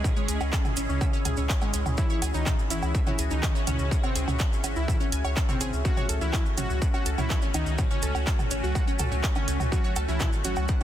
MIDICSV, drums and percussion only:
0, 0, Header, 1, 2, 480
1, 0, Start_track
1, 0, Key_signature, 4, "minor"
1, 0, Tempo, 483871
1, 43, Time_signature, 4, 2, 24, 8
1, 10743, End_track
2, 0, Start_track
2, 0, Title_t, "Drums"
2, 43, Note_on_c, 9, 36, 125
2, 43, Note_on_c, 9, 45, 97
2, 43, Note_on_c, 9, 77, 51
2, 48, Note_on_c, 9, 70, 60
2, 142, Note_off_c, 9, 36, 0
2, 142, Note_off_c, 9, 45, 0
2, 142, Note_off_c, 9, 77, 0
2, 147, Note_off_c, 9, 70, 0
2, 164, Note_on_c, 9, 70, 26
2, 263, Note_off_c, 9, 70, 0
2, 283, Note_on_c, 9, 42, 119
2, 286, Note_on_c, 9, 70, 98
2, 382, Note_off_c, 9, 42, 0
2, 385, Note_off_c, 9, 70, 0
2, 401, Note_on_c, 9, 70, 39
2, 403, Note_on_c, 9, 77, 76
2, 500, Note_off_c, 9, 70, 0
2, 502, Note_off_c, 9, 77, 0
2, 522, Note_on_c, 9, 39, 121
2, 523, Note_on_c, 9, 36, 118
2, 526, Note_on_c, 9, 70, 56
2, 622, Note_off_c, 9, 36, 0
2, 622, Note_off_c, 9, 39, 0
2, 625, Note_off_c, 9, 70, 0
2, 643, Note_on_c, 9, 45, 91
2, 643, Note_on_c, 9, 77, 50
2, 645, Note_on_c, 9, 70, 26
2, 742, Note_off_c, 9, 45, 0
2, 742, Note_off_c, 9, 77, 0
2, 744, Note_off_c, 9, 70, 0
2, 758, Note_on_c, 9, 70, 107
2, 763, Note_on_c, 9, 42, 97
2, 857, Note_off_c, 9, 70, 0
2, 862, Note_off_c, 9, 42, 0
2, 887, Note_on_c, 9, 70, 39
2, 986, Note_off_c, 9, 70, 0
2, 1002, Note_on_c, 9, 70, 52
2, 1003, Note_on_c, 9, 36, 123
2, 1003, Note_on_c, 9, 77, 76
2, 1101, Note_off_c, 9, 70, 0
2, 1102, Note_off_c, 9, 36, 0
2, 1102, Note_off_c, 9, 77, 0
2, 1128, Note_on_c, 9, 70, 27
2, 1227, Note_off_c, 9, 70, 0
2, 1243, Note_on_c, 9, 42, 108
2, 1243, Note_on_c, 9, 45, 94
2, 1243, Note_on_c, 9, 70, 98
2, 1243, Note_on_c, 9, 77, 51
2, 1342, Note_off_c, 9, 42, 0
2, 1342, Note_off_c, 9, 45, 0
2, 1342, Note_off_c, 9, 77, 0
2, 1343, Note_off_c, 9, 70, 0
2, 1356, Note_on_c, 9, 70, 45
2, 1456, Note_off_c, 9, 70, 0
2, 1483, Note_on_c, 9, 36, 124
2, 1483, Note_on_c, 9, 39, 127
2, 1491, Note_on_c, 9, 70, 51
2, 1582, Note_off_c, 9, 36, 0
2, 1582, Note_off_c, 9, 39, 0
2, 1590, Note_off_c, 9, 70, 0
2, 1600, Note_on_c, 9, 70, 28
2, 1603, Note_on_c, 9, 77, 76
2, 1699, Note_off_c, 9, 70, 0
2, 1702, Note_off_c, 9, 77, 0
2, 1722, Note_on_c, 9, 70, 101
2, 1723, Note_on_c, 9, 42, 96
2, 1821, Note_off_c, 9, 70, 0
2, 1822, Note_off_c, 9, 42, 0
2, 1843, Note_on_c, 9, 45, 93
2, 1843, Note_on_c, 9, 77, 51
2, 1844, Note_on_c, 9, 70, 40
2, 1943, Note_off_c, 9, 45, 0
2, 1943, Note_off_c, 9, 70, 0
2, 1943, Note_off_c, 9, 77, 0
2, 1958, Note_on_c, 9, 70, 60
2, 1963, Note_on_c, 9, 36, 127
2, 2057, Note_off_c, 9, 70, 0
2, 2062, Note_off_c, 9, 36, 0
2, 2080, Note_on_c, 9, 70, 28
2, 2179, Note_off_c, 9, 70, 0
2, 2203, Note_on_c, 9, 42, 113
2, 2203, Note_on_c, 9, 77, 78
2, 2211, Note_on_c, 9, 70, 97
2, 2302, Note_off_c, 9, 42, 0
2, 2302, Note_off_c, 9, 77, 0
2, 2311, Note_off_c, 9, 70, 0
2, 2322, Note_on_c, 9, 70, 44
2, 2421, Note_off_c, 9, 70, 0
2, 2443, Note_on_c, 9, 36, 127
2, 2443, Note_on_c, 9, 39, 124
2, 2443, Note_on_c, 9, 45, 91
2, 2443, Note_on_c, 9, 77, 50
2, 2446, Note_on_c, 9, 70, 62
2, 2542, Note_off_c, 9, 36, 0
2, 2542, Note_off_c, 9, 39, 0
2, 2542, Note_off_c, 9, 45, 0
2, 2542, Note_off_c, 9, 77, 0
2, 2545, Note_off_c, 9, 70, 0
2, 2567, Note_on_c, 9, 70, 27
2, 2666, Note_off_c, 9, 70, 0
2, 2683, Note_on_c, 9, 42, 95
2, 2686, Note_on_c, 9, 70, 108
2, 2782, Note_off_c, 9, 42, 0
2, 2785, Note_off_c, 9, 70, 0
2, 2801, Note_on_c, 9, 70, 39
2, 2803, Note_on_c, 9, 77, 78
2, 2900, Note_off_c, 9, 70, 0
2, 2902, Note_off_c, 9, 77, 0
2, 2923, Note_on_c, 9, 36, 127
2, 2923, Note_on_c, 9, 70, 50
2, 3022, Note_off_c, 9, 36, 0
2, 3022, Note_off_c, 9, 70, 0
2, 3042, Note_on_c, 9, 70, 27
2, 3043, Note_on_c, 9, 45, 88
2, 3043, Note_on_c, 9, 77, 49
2, 3141, Note_off_c, 9, 70, 0
2, 3142, Note_off_c, 9, 45, 0
2, 3142, Note_off_c, 9, 77, 0
2, 3160, Note_on_c, 9, 70, 92
2, 3162, Note_on_c, 9, 42, 114
2, 3259, Note_off_c, 9, 70, 0
2, 3261, Note_off_c, 9, 42, 0
2, 3279, Note_on_c, 9, 70, 45
2, 3378, Note_off_c, 9, 70, 0
2, 3403, Note_on_c, 9, 36, 127
2, 3403, Note_on_c, 9, 39, 127
2, 3403, Note_on_c, 9, 77, 78
2, 3405, Note_on_c, 9, 70, 55
2, 3502, Note_off_c, 9, 36, 0
2, 3502, Note_off_c, 9, 39, 0
2, 3502, Note_off_c, 9, 77, 0
2, 3504, Note_off_c, 9, 70, 0
2, 3529, Note_on_c, 9, 70, 29
2, 3628, Note_off_c, 9, 70, 0
2, 3642, Note_on_c, 9, 70, 100
2, 3643, Note_on_c, 9, 42, 103
2, 3643, Note_on_c, 9, 45, 92
2, 3643, Note_on_c, 9, 77, 49
2, 3741, Note_off_c, 9, 70, 0
2, 3742, Note_off_c, 9, 42, 0
2, 3742, Note_off_c, 9, 45, 0
2, 3742, Note_off_c, 9, 77, 0
2, 3758, Note_on_c, 9, 70, 44
2, 3858, Note_off_c, 9, 70, 0
2, 3883, Note_on_c, 9, 36, 123
2, 3889, Note_on_c, 9, 70, 60
2, 3982, Note_off_c, 9, 36, 0
2, 3988, Note_off_c, 9, 70, 0
2, 4002, Note_on_c, 9, 70, 27
2, 4003, Note_on_c, 9, 77, 80
2, 4101, Note_off_c, 9, 70, 0
2, 4102, Note_off_c, 9, 77, 0
2, 4122, Note_on_c, 9, 42, 113
2, 4127, Note_on_c, 9, 70, 92
2, 4221, Note_off_c, 9, 42, 0
2, 4226, Note_off_c, 9, 70, 0
2, 4243, Note_on_c, 9, 45, 89
2, 4243, Note_on_c, 9, 77, 55
2, 4252, Note_on_c, 9, 70, 42
2, 4342, Note_off_c, 9, 45, 0
2, 4342, Note_off_c, 9, 77, 0
2, 4351, Note_off_c, 9, 70, 0
2, 4356, Note_on_c, 9, 70, 53
2, 4362, Note_on_c, 9, 39, 116
2, 4363, Note_on_c, 9, 36, 127
2, 4455, Note_off_c, 9, 70, 0
2, 4461, Note_off_c, 9, 39, 0
2, 4462, Note_off_c, 9, 36, 0
2, 4493, Note_on_c, 9, 70, 27
2, 4592, Note_off_c, 9, 70, 0
2, 4601, Note_on_c, 9, 70, 100
2, 4602, Note_on_c, 9, 42, 92
2, 4602, Note_on_c, 9, 77, 72
2, 4701, Note_off_c, 9, 42, 0
2, 4701, Note_off_c, 9, 70, 0
2, 4701, Note_off_c, 9, 77, 0
2, 4721, Note_on_c, 9, 70, 37
2, 4820, Note_off_c, 9, 70, 0
2, 4843, Note_on_c, 9, 36, 122
2, 4843, Note_on_c, 9, 45, 86
2, 4843, Note_on_c, 9, 77, 51
2, 4854, Note_on_c, 9, 70, 59
2, 4942, Note_off_c, 9, 36, 0
2, 4942, Note_off_c, 9, 45, 0
2, 4942, Note_off_c, 9, 77, 0
2, 4953, Note_off_c, 9, 70, 0
2, 4964, Note_on_c, 9, 70, 30
2, 5063, Note_off_c, 9, 70, 0
2, 5083, Note_on_c, 9, 42, 112
2, 5088, Note_on_c, 9, 70, 87
2, 5182, Note_off_c, 9, 42, 0
2, 5187, Note_off_c, 9, 70, 0
2, 5203, Note_on_c, 9, 70, 39
2, 5203, Note_on_c, 9, 77, 74
2, 5302, Note_off_c, 9, 70, 0
2, 5303, Note_off_c, 9, 77, 0
2, 5323, Note_on_c, 9, 36, 123
2, 5323, Note_on_c, 9, 39, 122
2, 5323, Note_on_c, 9, 70, 55
2, 5422, Note_off_c, 9, 36, 0
2, 5422, Note_off_c, 9, 39, 0
2, 5422, Note_off_c, 9, 70, 0
2, 5443, Note_on_c, 9, 45, 88
2, 5443, Note_on_c, 9, 77, 51
2, 5446, Note_on_c, 9, 70, 31
2, 5543, Note_off_c, 9, 45, 0
2, 5543, Note_off_c, 9, 77, 0
2, 5545, Note_off_c, 9, 70, 0
2, 5562, Note_on_c, 9, 70, 96
2, 5563, Note_on_c, 9, 42, 92
2, 5661, Note_off_c, 9, 70, 0
2, 5662, Note_off_c, 9, 42, 0
2, 5685, Note_on_c, 9, 70, 41
2, 5785, Note_off_c, 9, 70, 0
2, 5803, Note_on_c, 9, 36, 124
2, 5805, Note_on_c, 9, 70, 53
2, 5902, Note_off_c, 9, 36, 0
2, 5904, Note_off_c, 9, 70, 0
2, 5922, Note_on_c, 9, 70, 28
2, 5923, Note_on_c, 9, 45, 90
2, 5923, Note_on_c, 9, 77, 56
2, 6022, Note_off_c, 9, 70, 0
2, 6023, Note_off_c, 9, 45, 0
2, 6023, Note_off_c, 9, 77, 0
2, 6043, Note_on_c, 9, 42, 112
2, 6046, Note_on_c, 9, 70, 94
2, 6142, Note_off_c, 9, 42, 0
2, 6145, Note_off_c, 9, 70, 0
2, 6163, Note_on_c, 9, 70, 42
2, 6262, Note_off_c, 9, 70, 0
2, 6283, Note_on_c, 9, 36, 125
2, 6283, Note_on_c, 9, 39, 113
2, 6283, Note_on_c, 9, 77, 79
2, 6286, Note_on_c, 9, 70, 60
2, 6382, Note_off_c, 9, 36, 0
2, 6382, Note_off_c, 9, 39, 0
2, 6382, Note_off_c, 9, 77, 0
2, 6385, Note_off_c, 9, 70, 0
2, 6405, Note_on_c, 9, 70, 24
2, 6504, Note_off_c, 9, 70, 0
2, 6522, Note_on_c, 9, 70, 100
2, 6523, Note_on_c, 9, 42, 91
2, 6523, Note_on_c, 9, 45, 85
2, 6523, Note_on_c, 9, 77, 52
2, 6622, Note_off_c, 9, 42, 0
2, 6622, Note_off_c, 9, 45, 0
2, 6622, Note_off_c, 9, 70, 0
2, 6622, Note_off_c, 9, 77, 0
2, 6647, Note_on_c, 9, 70, 42
2, 6746, Note_off_c, 9, 70, 0
2, 6763, Note_on_c, 9, 36, 124
2, 6763, Note_on_c, 9, 70, 58
2, 6862, Note_off_c, 9, 36, 0
2, 6862, Note_off_c, 9, 70, 0
2, 6884, Note_on_c, 9, 77, 78
2, 6889, Note_on_c, 9, 70, 26
2, 6983, Note_off_c, 9, 77, 0
2, 6988, Note_off_c, 9, 70, 0
2, 7001, Note_on_c, 9, 70, 86
2, 7003, Note_on_c, 9, 42, 107
2, 7100, Note_off_c, 9, 70, 0
2, 7102, Note_off_c, 9, 42, 0
2, 7124, Note_on_c, 9, 45, 91
2, 7124, Note_on_c, 9, 70, 42
2, 7124, Note_on_c, 9, 77, 56
2, 7223, Note_off_c, 9, 45, 0
2, 7223, Note_off_c, 9, 70, 0
2, 7223, Note_off_c, 9, 77, 0
2, 7243, Note_on_c, 9, 36, 114
2, 7243, Note_on_c, 9, 39, 120
2, 7246, Note_on_c, 9, 70, 54
2, 7342, Note_off_c, 9, 36, 0
2, 7342, Note_off_c, 9, 39, 0
2, 7345, Note_off_c, 9, 70, 0
2, 7358, Note_on_c, 9, 70, 28
2, 7457, Note_off_c, 9, 70, 0
2, 7480, Note_on_c, 9, 70, 86
2, 7483, Note_on_c, 9, 42, 93
2, 7483, Note_on_c, 9, 77, 83
2, 7579, Note_off_c, 9, 70, 0
2, 7582, Note_off_c, 9, 42, 0
2, 7582, Note_off_c, 9, 77, 0
2, 7601, Note_on_c, 9, 70, 38
2, 7700, Note_off_c, 9, 70, 0
2, 7718, Note_on_c, 9, 70, 49
2, 7723, Note_on_c, 9, 36, 119
2, 7723, Note_on_c, 9, 45, 89
2, 7723, Note_on_c, 9, 77, 54
2, 7817, Note_off_c, 9, 70, 0
2, 7822, Note_off_c, 9, 36, 0
2, 7822, Note_off_c, 9, 45, 0
2, 7822, Note_off_c, 9, 77, 0
2, 7844, Note_on_c, 9, 70, 28
2, 7943, Note_off_c, 9, 70, 0
2, 7958, Note_on_c, 9, 70, 88
2, 7962, Note_on_c, 9, 42, 106
2, 8057, Note_off_c, 9, 70, 0
2, 8062, Note_off_c, 9, 42, 0
2, 8083, Note_on_c, 9, 77, 84
2, 8086, Note_on_c, 9, 70, 36
2, 8182, Note_off_c, 9, 77, 0
2, 8186, Note_off_c, 9, 70, 0
2, 8201, Note_on_c, 9, 70, 55
2, 8203, Note_on_c, 9, 36, 115
2, 8203, Note_on_c, 9, 39, 113
2, 8301, Note_off_c, 9, 70, 0
2, 8302, Note_off_c, 9, 36, 0
2, 8302, Note_off_c, 9, 39, 0
2, 8323, Note_on_c, 9, 45, 92
2, 8323, Note_on_c, 9, 77, 56
2, 8325, Note_on_c, 9, 70, 27
2, 8423, Note_off_c, 9, 45, 0
2, 8423, Note_off_c, 9, 77, 0
2, 8424, Note_off_c, 9, 70, 0
2, 8439, Note_on_c, 9, 70, 85
2, 8443, Note_on_c, 9, 42, 90
2, 8538, Note_off_c, 9, 70, 0
2, 8542, Note_off_c, 9, 42, 0
2, 8569, Note_on_c, 9, 70, 39
2, 8668, Note_off_c, 9, 70, 0
2, 8683, Note_on_c, 9, 36, 113
2, 8683, Note_on_c, 9, 77, 79
2, 8685, Note_on_c, 9, 70, 50
2, 8782, Note_off_c, 9, 36, 0
2, 8782, Note_off_c, 9, 77, 0
2, 8784, Note_off_c, 9, 70, 0
2, 8807, Note_on_c, 9, 70, 28
2, 8906, Note_off_c, 9, 70, 0
2, 8916, Note_on_c, 9, 70, 86
2, 8923, Note_on_c, 9, 42, 104
2, 8923, Note_on_c, 9, 45, 94
2, 8923, Note_on_c, 9, 77, 56
2, 9015, Note_off_c, 9, 70, 0
2, 9022, Note_off_c, 9, 42, 0
2, 9022, Note_off_c, 9, 45, 0
2, 9022, Note_off_c, 9, 77, 0
2, 9045, Note_on_c, 9, 70, 40
2, 9145, Note_off_c, 9, 70, 0
2, 9163, Note_on_c, 9, 36, 116
2, 9163, Note_on_c, 9, 39, 124
2, 9164, Note_on_c, 9, 70, 51
2, 9262, Note_off_c, 9, 36, 0
2, 9262, Note_off_c, 9, 39, 0
2, 9263, Note_off_c, 9, 70, 0
2, 9279, Note_on_c, 9, 70, 28
2, 9283, Note_on_c, 9, 77, 82
2, 9378, Note_off_c, 9, 70, 0
2, 9382, Note_off_c, 9, 77, 0
2, 9403, Note_on_c, 9, 42, 89
2, 9407, Note_on_c, 9, 70, 83
2, 9502, Note_off_c, 9, 42, 0
2, 9506, Note_off_c, 9, 70, 0
2, 9524, Note_on_c, 9, 45, 93
2, 9524, Note_on_c, 9, 77, 56
2, 9526, Note_on_c, 9, 70, 35
2, 9623, Note_off_c, 9, 45, 0
2, 9623, Note_off_c, 9, 77, 0
2, 9625, Note_off_c, 9, 70, 0
2, 9643, Note_on_c, 9, 36, 110
2, 9649, Note_on_c, 9, 70, 49
2, 9742, Note_off_c, 9, 36, 0
2, 9748, Note_off_c, 9, 70, 0
2, 9763, Note_on_c, 9, 70, 26
2, 9862, Note_off_c, 9, 70, 0
2, 9879, Note_on_c, 9, 70, 92
2, 9883, Note_on_c, 9, 42, 106
2, 9883, Note_on_c, 9, 77, 87
2, 9978, Note_off_c, 9, 70, 0
2, 9982, Note_off_c, 9, 42, 0
2, 9982, Note_off_c, 9, 77, 0
2, 10007, Note_on_c, 9, 70, 37
2, 10106, Note_off_c, 9, 70, 0
2, 10119, Note_on_c, 9, 70, 54
2, 10123, Note_on_c, 9, 36, 114
2, 10123, Note_on_c, 9, 39, 116
2, 10123, Note_on_c, 9, 45, 91
2, 10123, Note_on_c, 9, 77, 55
2, 10219, Note_off_c, 9, 70, 0
2, 10222, Note_off_c, 9, 36, 0
2, 10222, Note_off_c, 9, 39, 0
2, 10222, Note_off_c, 9, 45, 0
2, 10222, Note_off_c, 9, 77, 0
2, 10243, Note_on_c, 9, 70, 26
2, 10342, Note_off_c, 9, 70, 0
2, 10359, Note_on_c, 9, 70, 93
2, 10363, Note_on_c, 9, 42, 88
2, 10458, Note_off_c, 9, 70, 0
2, 10462, Note_off_c, 9, 42, 0
2, 10476, Note_on_c, 9, 70, 40
2, 10483, Note_on_c, 9, 77, 88
2, 10575, Note_off_c, 9, 70, 0
2, 10582, Note_off_c, 9, 77, 0
2, 10597, Note_on_c, 9, 70, 53
2, 10603, Note_on_c, 9, 36, 115
2, 10696, Note_off_c, 9, 70, 0
2, 10702, Note_off_c, 9, 36, 0
2, 10743, End_track
0, 0, End_of_file